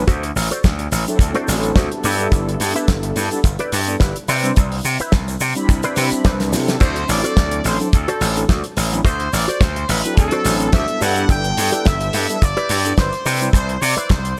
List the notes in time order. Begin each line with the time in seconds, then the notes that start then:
0.07 D2 F#4 A4 C5 E5, kick, closed hi-hat, shaker
0.23 closed hi-hat
0.36 A1, muted clean electric guitar stroke, open hi-hat, shaker
0.51 F#4 A4 C5 D5, muted slap bass stroke, closed hi-hat, shaker
0.64 D2, kick, snare, closed hi-hat, shaker
0.79 muted clean electric guitar stroke, closed hi-hat
0.92 A1, muted clean electric guitar stroke, open hi-hat, shaker
1.06 F#3 C4 D4 E4 A4, closed hi-hat, shaker
1.19 D2, kick, closed hi-hat, shaker
1.35 F#4 A4 C5 D5, closed hi-hat
1.48 A1, snare, open hi-hat, shaker
1.63 closed hi-hat, shaker
1.76 D2 F#4 A4 C5 E5, kick, snare, closed hi-hat, shaker
1.91 G3 B3 D4 E4 A4, closed hi-hat
2.04 G2 E4 G4 B4 D5, open hi-hat, shaker
2.18 G3 B3 D4 E4 A4, closed hi-hat, shaker
2.32 G1, kick, closed hi-hat, shaker
2.49 closed hi-hat
2.60 G2, muted clean electric guitar stroke, open hi-hat, shaker
2.75 E4 G4 B4 E5, closed hi-hat, shaker
2.88 G1, kick, snare, closed hi-hat, shaker
3.03 muted clean electric guitar stroke, closed hi-hat
3.16 G2, muted clean electric guitar stroke, open hi-hat, shaker
3.31 G3 B3 D4 E4 A4, closed hi-hat, shaker
3.44 G1, kick, closed hi-hat, shaker
3.59 E4 G4 B4 D5, closed hi-hat
3.72 G2, open hi-hat, shaker
3.87 G3 B3 D4 E4 A4, closed hi-hat, shaker
4.00 G1 E4 G4 B4 D5, kick, snare, closed hi-hat, shaker
4.16 closed hi-hat
4.28 C3 E4 B4 C5 D5, open hi-hat, shaker
4.43 G3 C4 D4 E4 C5, closed hi-hat, shaker
4.56 C2, kick, closed hi-hat, shaker
4.72 open hi-hat
4.85 C3, muted clean electric guitar stroke, open hi-hat, shaker
5.00 E4 B4 C5 E5, muted slap bass stroke, closed hi-hat, shaker
5.12 C2, kick, snare, closed hi-hat, shaker
5.28 muted clean electric guitar stroke, closed hi-hat, shaker
5.40 C3, muted clean electric guitar stroke, open hi-hat, shaker
5.55 G3 C4 D4 E4 B5, closed hi-hat, shaker
5.69 C2, kick, closed hi-hat, shaker
5.83 E4 B4 C5 D5, closed hi-hat, shaker
5.96 C3, snare, open hi-hat, shaker
6.12 muted slap bass stroke, closed hi-hat, shaker
6.25 C2 E4 B4 C5 D5, kick, snare, closed hi-hat, shaker
6.39 G3 C4 D4 E4 B4, snare, closed hi-hat, shaker
6.51 C3 F#3 C4 D4 E4 A4, muted clean electric guitar stroke, snare, open hi-hat, shaker
6.68 muted clean electric guitar stroke, snare, closed hi-hat, shaker
6.80 D2 F#4 A4 C5 D5, kick, closed hi-hat, crash, shaker
6.96 closed hi-hat
7.08 A1 D5, muted clean electric guitar stroke, open hi-hat, shaker
7.24 F#4 A4 C5 D5, closed hi-hat, shaker
7.37 D2, kick, snare, closed hi-hat, shaker
7.51 muted clean electric guitar stroke, closed hi-hat
7.64 A1 C5, muted clean electric guitar stroke, open hi-hat, shaker
7.79 F#3 C4 D4 E4 A4, closed hi-hat, shaker
7.93 D2 A4, kick, closed hi-hat, shaker
8.08 F#4 A4 C5 D5, closed hi-hat
8.21 A1, open hi-hat, shaker
8.36 F#3 C4 D4 E4 A4, closed hi-hat, shaker
8.49 D2 F#4 A4 C5 D5, kick, snare, closed hi-hat, shaker
8.64 closed hi-hat
8.77 A1, muted clean electric guitar stroke, open hi-hat, shaker
8.92 F#3 C4 D4 E4 B4, muted clean electric guitar stroke, closed hi-hat, shaker
9.04 F#4 A4 C5 E5, kick, closed hi-hat, shaker
9.20 closed hi-hat
9.33 A1 D5, muted clean electric guitar stroke, open hi-hat, shaker
9.48 F#4 A4 C5 D5, closed hi-hat, shaker
9.61 D2 C5, kick, snare, closed hi-hat, shaker
9.76 muted clean electric guitar stroke, closed hi-hat
9.89 A1 B4, muted clean electric guitar stroke, open hi-hat, shaker
10.03 F#3 C4 D4 E4 A4, closed hi-hat, shaker
10.17 D2 A4, kick, closed hi-hat, shaker
10.31 F#4 A4 C5 D5, closed hi-hat
10.45 A1, snare, open hi-hat, shaker
10.60 closed hi-hat, shaker
10.72 D2 F#4 A4 C5 D5 E5, kick, snare, closed hi-hat, shaker
10.88 G3 B3 D4 E4 A4, closed hi-hat
11.01 G2 E4 G4 B4 D5 F#5, open hi-hat, shaker
11.15 G3 B3 D4 E4 A4, closed hi-hat, shaker
11.29 G1 G5, kick, closed hi-hat, shaker
11.44 closed hi-hat
11.57 G2, muted clean electric guitar stroke, open hi-hat, shaker
11.72 E4 G4 B4 D5, closed hi-hat, shaker
11.85 G1 E5, kick, snare, closed hi-hat, shaker
12.00 muted clean electric guitar stroke, closed hi-hat
12.13 G2, muted clean electric guitar stroke, open hi-hat, shaker
12.28 G3 B3 D4 E4 A4, closed hi-hat, shaker
12.42 G1 D5, kick, closed hi-hat, shaker
12.57 E4 G4 B4 D5, closed hi-hat
12.69 G2, open hi-hat, shaker
12.85 G3 B3 D4 E4 A4, closed hi-hat, shaker
12.97 G1 E4 G4 B4 C5 D5, kick, snare, closed hi-hat, shaker
13.13 closed hi-hat
13.25 C3 E4 B4 C5 D5, open hi-hat, shaker
13.41 G3 C4 D4 E4 C5, closed hi-hat, shaker
13.53 C2 C5, kick, closed hi-hat, shaker
13.69 closed hi-hat
13.81 C3 D5, muted clean electric guitar stroke, open hi-hat, shaker
13.97 E4 B4 C5 D5, muted slap bass stroke, closed hi-hat, shaker
14.09 C2 C5, kick, snare, closed hi-hat, shaker
14.25 muted clean electric guitar stroke, closed hi-hat